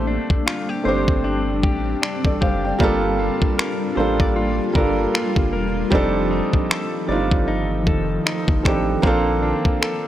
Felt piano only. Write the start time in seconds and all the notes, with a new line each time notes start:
Already playing: A3 C4 D4 G4 A4
0.84 A3 C4 D4 G4
0.88 C5
2.25 A4 D5
2.42 C5 F5
2.65 D5 G5
2.79 G3 A#3 D4 F4
2.83 A4
3.95 G3 A#3 D4 F4
4.00 A4
4.74 G3 A#3 D4 F4
4.78 A4
5.90 G3 C4 D4 D#4
5.95 A4
7.07 G3 C4 D4 D#4
7.12 F4
8.63 G3 C4 D4 D#4
8.68 G4
9.02 A#3 C4 D4 F4
9.07 A4